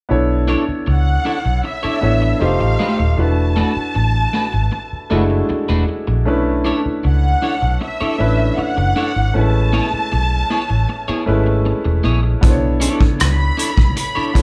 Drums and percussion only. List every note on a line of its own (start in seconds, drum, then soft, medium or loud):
12.43 kick loud
12.43 closed hi-hat medium
12.81 closed hi-hat medium
13.01 kick medium
13.20 cross-stick medium
13.20 closed hi-hat medium
13.59 closed hi-hat medium
13.77 kick medium
13.77 cross-stick soft
13.97 closed hi-hat medium
14.35 kick medium
14.35 closed hi-hat medium